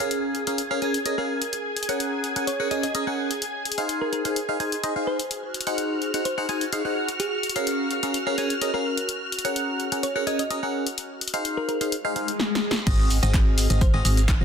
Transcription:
Already playing: G#4 G#5
0.00 C#4 G#4 A#4 F5
0.11 closed hi-hat
0.35 closed hi-hat
0.47 C#4 G#4 A#4 F5, closed hi-hat
0.58 closed hi-hat
0.71 C#4 G#4 A#4 F5
0.82 C#4 G#4 A#4 G#5, closed hi-hat
0.94 closed hi-hat
1.06 C#4 G#4 A#4 D#5, closed hi-hat
1.18 C#4 G#4 A#4 F5
1.42 closed hi-hat
1.53 closed hi-hat
1.77 closed hi-hat
1.83 closed hi-hat
1.89 C#4 G#4 A#4 F#5, closed hi-hat
2.00 closed hi-hat
2.24 closed hi-hat
2.36 C#4 G#4 A#4 F#5, closed hi-hat
2.47 C#5, closed hi-hat
2.60 C#4 G#4 A#4 F#5
2.71 C#4 G#4 A#4 D#5 G#5, closed hi-hat
2.83 D#5, closed hi-hat
2.95 C#4 G#4 A#4 D#5, closed hi-hat
3.07 C#4 G#4 A#4 F#5
3.31 closed hi-hat
3.42 closed hi-hat
3.65 closed hi-hat
3.72 closed hi-hat
3.78 D#4 G#4 C5 F5, closed hi-hat
3.89 closed hi-hat
4.01 A#4
4.13 A#4, closed hi-hat
4.25 D#4 G#4 C5 F5, closed hi-hat
4.36 closed hi-hat
4.49 D#4 G#4 C5 F5
4.60 D#4 G#4 C5 G#5, closed hi-hat
4.72 closed hi-hat
4.84 D#4 G#4 C5 D#5, closed hi-hat
4.96 D#4 G#4 C5 F5
5.07 C5
5.20 closed hi-hat
5.31 F#4 F6, closed hi-hat
5.54 closed hi-hat
5.61 closed hi-hat
5.67 D#4 G#4 C5 F#5, closed hi-hat
5.78 closed hi-hat
6.02 closed hi-hat
6.14 D#4 G#4 C5 F#5, closed hi-hat
6.25 C5, closed hi-hat
6.38 D#4 G#4 C5 F#5
6.49 D#4 G#4 C5 G#5, closed hi-hat
6.61 closed hi-hat
6.73 D#4 G#4 C5 F5, closed hi-hat
6.85 D#4 G#4 C5 F#5
7.08 closed hi-hat
7.20 G#4, closed hi-hat
7.43 closed hi-hat
7.49 closed hi-hat
7.56 C#4 G#4 A#4 F5, closed hi-hat
7.67 closed hi-hat
7.91 closed hi-hat
8.03 C#4 G#4 A#4 F5, closed hi-hat
8.14 closed hi-hat
8.27 C#4 G#4 A#4 F5
8.38 C#4 G#4 A#4 G#5, closed hi-hat
8.50 closed hi-hat
8.62 C#4 G#4 A#4 D#5, closed hi-hat
8.74 C#4 G#4 A#4 F5
8.98 closed hi-hat
9.09 closed hi-hat
9.32 closed hi-hat
9.39 closed hi-hat
9.45 C#4 G#4 A#4 F#5, closed hi-hat
9.56 closed hi-hat
9.80 closed hi-hat
9.92 C#4 G#4 A#4 F#5, closed hi-hat
10.03 C#5, closed hi-hat
10.16 C#4 G#4 A#4 F#5
10.27 C#4 G#4 A#4 D#5 G#5, closed hi-hat
10.39 D#5, closed hi-hat
10.50 C#4 G#4 A#4 D#5, closed hi-hat
10.63 C#4 G#4 A#4 F#5
10.87 closed hi-hat
10.98 closed hi-hat
11.21 closed hi-hat
11.28 closed hi-hat
11.34 D#4 G#4 C5 F5, closed hi-hat
11.45 closed hi-hat
11.57 A#4
11.68 A#4, closed hi-hat
11.81 D#4 G#4 C5 F5, closed hi-hat
11.92 closed hi-hat, swell
12.05 D#4 G#4 C5 F5
12.16 D#4 G#4 C5 F5, closed hi-hat
12.28 closed hi-hat
12.40 snare
12.55 snare
12.71 snare
12.87 G#1 C4 F#4 G#4 D#5 F5, kick, closed hi-hat, crash, shaker
12.99 snare
13.10 closed hi-hat, open hi-hat, shaker
13.23 G#1 C4 F#4 G#4 D#5, snare, closed hi-hat, shaker
13.34 kick, snare, clap, closed hi-hat, shaker
13.58 closed hi-hat, open hi-hat, shaker
13.70 G#1 C4 F#4 G#4 D#5, closed hi-hat, shaker
13.81 C5, kick, closed hi-hat, shaker
13.94 G#1 C4 F#4 G#4 D#5, snare
14.05 G#1 C4 F#4 G#4 D#5, closed hi-hat, open hi-hat, shaker
14.17 snare, closed hi-hat, shaker
14.28 kick, snare, clap, closed hi-hat, shaker
14.41 G#1 C4 F#4 G#4 D#5

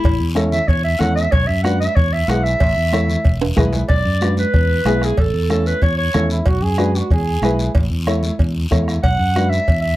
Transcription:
Already playing: E4
0.04 A1, bombo low, cowbell, long guiro
0.20 E2
0.35 C#4 E4 A4, bombo rim, high conga, short guiro
0.52 E5, low conga, short guiro
0.68 E2 C#5, bombo low, cowbell, long guiro
0.84 E5
0.99 E2 C#4 E4 A4 F#5, bombo rim, high conga, low conga, short guiro
1.16 E5, short guiro
1.32 B1 C#5, bombo low, cowbell, long guiro
1.47 F#2 E5
1.63 D4 F#4 B4 F#5, bombo rim, high conga, short guiro
1.80 E5, short guiro
1.96 E2 C#5, bombo low, cowbell, long guiro
2.13 E5
2.28 B1 E4 G#4 B4 F#5, bombo rim, high conga, short guiro
2.44 E5, short guiro
2.60 A1, bombo low, cowbell, long guiro
2.77 E2
2.93 E4 A4 C#5, bombo rim, high conga, short guiro
3.09 low conga, short guiro
3.25 E1, bombo low, cowbell, long guiro
3.42 high timbale
3.56 B1 E4 G#4 B4, bombo low, bombo rim, high conga, low conga, low timbale, short guiro
3.73 low timbale, short guiro
3.89 B1 D5, bombo low, cowbell, long guiro
4.05 F#2
4.21 D4 F#4 B4, bombo rim, high conga, short guiro
4.37 B4, high conga, short guiro
4.54 E2, bombo low, cowbell, long guiro
4.85 B1 B3 E4 G#4, bombo rim, high conga, low timbale, short guiro
5.02 G#4, bombo rim, short guiro
5.17 A1 A4, bombo low, cowbell, long guiro
5.34 E2
5.50 C#4 E4 A4, bombo rim, high conga, short guiro
5.66 B4, short guiro
5.82 E2 C#5, bombo low, cowbell, long guiro
5.98 C#5
6.13 E2 C#4 E4 A4, bombo rim, high conga, low conga, low timbale, short guiro
6.30 E4, short guiro
6.46 B1 F#4, bombo low, cowbell, long guiro
6.62 F#2 G#4
6.78 D4 F#4 B4, bombo rim, high conga, short guiro
6.95 F#4, short guiro
7.10 E2 G#4, bombo low, cowbell, long guiro
7.42 B1 E4 G#4 B4, bombo rim, high conga, low timbale, short guiro
7.59 short guiro
7.75 A1, bombo low, cowbell, long guiro
7.90 E2
8.07 E4 A4 C#5, bombo rim, high conga, short guiro
8.23 high conga, short guiro
8.39 E2, bombo low, cowbell, long guiro
8.71 E2 E4 A4 C#5, bombo low, bombo rim, high conga, low conga, short guiro
8.88 bombo rim, short guiro
9.03 B1 F#5, bombo low, cowbell, long guiro
9.19 F#2
9.36 D4 F#4 B4, bombo rim, high conga, short guiro
9.50 E5, short guiro
9.68 E2, bombo low, cowbell, long guiro
9.81 E5

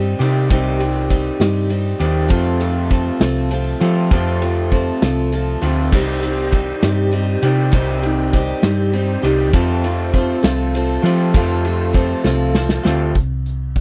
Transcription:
Already playing: G2 C3 D#3 G3 C4 D#4 G4
0.19 C3 D#3 G3 C4 D#4 G4, ride
0.49 C2 C3 D#3 G3 C4 D#4 G4, kick, ride
0.79 C4 D#4 G4, ride
1.09 G3 C4 D#4 G4, kick, ride
1.40 G2 C3 G3 C4 D#4 G4, snare, ride
1.69 G3 C4 D#4 G4, ride
2.00 D#2 C3 D#3 G3 C4 D#4 G4, ride
2.28 F2 C3 F3 A3 C4 F4 A4, kick, ride
2.60 C4 F4 A4, ride
2.90 F3 C4 F4 A4, kick, ride
3.20 C2 F3 C4 F4 A4, snare, ride
3.51 F3 C4 F4 A4, ride
3.80 F2 C3 F3 A3 C4 F4 A4, ride
4.11 F2 C3 F3 A3 C4 F4 A4, kick, ride
4.42 C4 F4 A4, ride
4.71 F3 C4 F4 A4, kick, ride
5.02 C2 F3 C4 F4 A4, snare, ride
5.32 F3 C4 F4 A4, ride
5.61 D2 F2 C3 F3 A3 C4 F4 A4, ride
5.92 C2 C3 D#3 G3 C4 D#4 G4 C5, kick, crash
6.21 C4 D#4 G4, ride
6.52 G3 C4 D#4 G4, kick, ride
6.82 G2 C3 G3 C4 D#4 G4, snare, ride
7.11 G3 C4 D#4 G4, ride
7.42 C3 D#3 G3 C4 D#4 G4, ride
7.71 C2 C3 D#3 G3 C4 D#4 G4, kick, ride
8.03 C4 D#4 G4, ride
8.33 G3 C4 D#4 G4, kick, ride
8.63 G2 C3 G3 C4 D#4 G4, snare, ride
8.93 G3 C4 D#4 G4, ride
9.22 C2 C3 D#3 G3 C4 D#4 G4, ride
9.52 F2 C3 F3 A3 C4 F4 A4 C5, kick, ride
9.84 C4 F4 A4, ride
10.13 F3 C4 F4, kick, ride
10.17 A4
10.43 C2 F3 C4 F4 A4, snare, ride
10.74 F3 C4 F4 A4, ride
11.02 F2 C3 F3 A3 C4 F4 A4, ride
11.33 F2 C3 F3 A3 C4 F4 A4, kick, ride
11.65 C4 F4 A4, ride
11.93 F3 C4 F4 A4, kick, ride
12.24 C2 F3 C4 F4 A4, snare
12.54 F3 C4 F4 A4, snare
12.69 snare
12.84 D2 F2 C3 F3 A3 C4 F4 A4, snare
13.15 C2, kick, closed hi-hat
13.46 closed hi-hat
13.76 kick, closed hi-hat

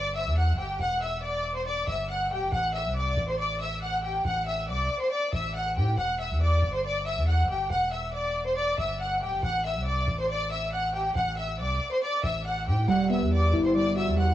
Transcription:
Already playing: G1 D5 D6
0.15 E5 E6
0.26 E2
0.37 F#5 F#6
0.53 G1
0.58 G4 G5
0.80 E1 F#5 F#6
1.02 E5 E6
1.23 D5 D6
1.55 C5 C6
1.66 D5 D6
1.87 G1 E5 E6
2.09 F#5 F#6
2.31 D1 G4 G5
2.41 G1
2.52 A1 F#5 F#6
2.74 E5 E6
2.85 C2
2.95 D5 D6
3.17 A1
3.28 C5 C6
3.38 D5 D6
3.60 E5 E6
3.82 F#5 F#6
4.03 G4 G5
4.25 A1 F#5 F#6
4.46 E5 E6
4.68 C2 D5 D6
5.00 C5 C6
5.11 D5 D6
5.33 A1 E5 E6
5.54 F#5 F#6
5.76 A2 G4 G5
5.97 E1 F#5 F#6
6.20 E5 E6
6.30 E2
6.41 D5 D6
6.62 G1
6.73 C5 C6
6.84 D5 D6
7.06 E5 E6
7.16 E2
7.27 F#5 F#6
7.43 G1
7.49 G4 G5
7.70 E1 F#5 F#6
7.92 E5 E6
8.13 D5 D6
8.45 C5 C6
8.56 D5 D6
8.78 G1 E5 E6
9.00 F#5 F#6
9.21 D1 G4 G5
9.32 G1
9.43 A1 F#5 F#6
9.65 E5 E6
9.75 C2
9.86 D5 D6
10.08 A1
10.19 C5 C6
10.29 D5 D6
10.51 E5 E6
10.72 F#5 F#6
10.94 G4 G5
11.15 A1 F#5 F#6
11.37 E5 E6
11.59 C2 D5 D6
11.91 C5 C6
12.02 D5 D6
12.23 A1 E5 E6
12.45 F#5 F#6
12.67 A2 G4 G5
12.88 E1 G3 F#5 F#6
13.10 B3 E5 E6
13.21 E2
13.31 G3 D5 D6
13.53 G1 E4
13.64 C5 C6
13.75 G3 D5 D6
13.95 F#4 E5 E6
14.07 E2
14.17 G3 F#5 F#6

